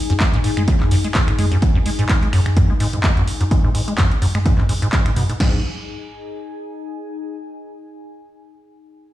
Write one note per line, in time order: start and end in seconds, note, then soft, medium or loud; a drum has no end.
0.00 5.39 D#4 medium
0.00 5.40 G#4 medium
0.00 5.40 G#5 medium
0.10 0.13 F#2 loud
0.10 closed hi-hat medium
0.20 0.25 G#3 medium
0.20 kick loud
0.20 clap loud
0.20 closed hi-hat medium
0.34 0.39 G#2 loud
0.34 closed hi-hat soft
0.44 0.51 G#2 medium
0.44 open hi-hat medium
0.57 0.63 G#3 medium
0.57 finger snap medium
0.57 closed hi-hat medium
0.57 mid tom medium
0.68 0.75 F#2 loud
0.68 kick loud
0.68 closed hi-hat medium
0.80 clap soft
0.80 mid tom medium
0.91 0.96 F#2 loud
0.91 open hi-hat loud
1.04 1.08 G#3 medium
1.04 closed hi-hat medium
1.15 1.22 G#2 loud
1.15 kick loud
1.15 clap loud
1.15 closed hi-hat medium
1.28 1.34 G#2 medium
1.28 finger snap medium
1.28 closed hi-hat soft
1.39 1.46 G#3 medium
1.39 mid tom medium
1.39 open hi-hat medium
1.52 1.57 F#2 loud
1.52 closed hi-hat medium
1.62 kick loud
1.62 closed hi-hat medium
1.75 1.79 F#2 loud
1.86 1.90 G#3 medium
1.86 open hi-hat loud
1.99 2.05 G#2 loud
1.99 closed hi-hat medium
2.09 2.17 G#2 medium
2.09 kick loud
2.09 clap loud
2.09 closed hi-hat medium
2.22 2.28 G#3 medium
2.22 closed hi-hat soft
2.33 2.40 F#2 loud
2.33 finger snap medium
2.33 open hi-hat medium
2.46 finger snap medium
2.46 closed hi-hat soft
2.46 mid tom medium
2.57 2.61 F#2 loud
2.57 kick loud
2.57 closed hi-hat medium
2.57 mid tom medium
2.70 2.73 G#3 medium
2.80 2.87 G#2 loud
2.80 open hi-hat loud
2.93 2.99 G#2 medium
2.93 closed hi-hat medium
2.93 mid tom medium
3.03 3.11 G#3 medium
3.03 kick loud
3.03 clap loud
3.03 closed hi-hat medium
3.17 3.23 F#2 loud
3.17 closed hi-hat soft
3.27 open hi-hat loud
3.41 3.44 F#2 loud
3.41 closed hi-hat medium
3.51 3.55 G#3 medium
3.51 kick loud
3.51 closed hi-hat medium
3.64 3.70 G#2 loud
3.75 3.82 G#2 medium
3.75 open hi-hat loud
3.88 3.94 G#3 medium
3.88 closed hi-hat soft
3.98 4.05 F#2 loud
3.98 kick loud
3.98 clap loud
3.98 closed hi-hat medium
4.11 closed hi-hat soft
4.22 4.26 F#2 loud
4.22 open hi-hat medium
4.35 4.39 G#3 medium
4.35 finger snap medium
4.35 mid tom loud
4.46 4.53 G#2 loud
4.46 kick loud
4.46 closed hi-hat medium
4.58 4.64 G#2 medium
4.58 clap soft
4.58 mid tom medium
4.69 4.74 G#2 medium
4.69 open hi-hat loud
4.82 4.88 G#2 loud
4.82 closed hi-hat medium
4.92 5.04 G#2 medium
4.92 kick loud
4.92 clap loud
4.92 closed hi-hat medium
5.06 5.12 G#2 medium
5.06 finger snap medium
5.06 closed hi-hat soft
5.16 5.24 B2 medium
5.16 mid tom medium
5.16 open hi-hat loud
5.29 5.33 G#2 medium
5.29 closed hi-hat soft
5.40 5.62 G#2 medium
5.40 7.25 D#4 medium
5.40 kick loud
5.40 snare loud
5.40 crash medium
5.48 7.25 G#4 medium
5.55 7.25 G#5 medium